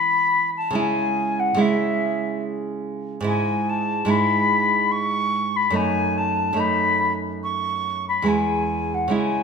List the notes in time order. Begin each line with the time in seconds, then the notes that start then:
Already playing: E3 G#3 C#4 B5
0.56 A5
0.70 C#3 G#3
0.75 E4 G#5
1.39 F#5
1.54 C#3 G#3 E4
1.60 E5
3.21 G#2 G#3 E4
3.27 G#5
3.69 A5
4.05 G#2 G#3 E4
4.09 B5
4.91 C#6
5.56 B5
5.70 F#2 A3 D#4
5.76 G#5
6.17 A5
6.53 F#2 A3 D#4
6.59 B5
7.43 C#6
8.08 B5
8.22 E2 G#3 E4
8.28 G#5
8.94 F#5
9.08 C#3 G#3 E4
9.15 G#5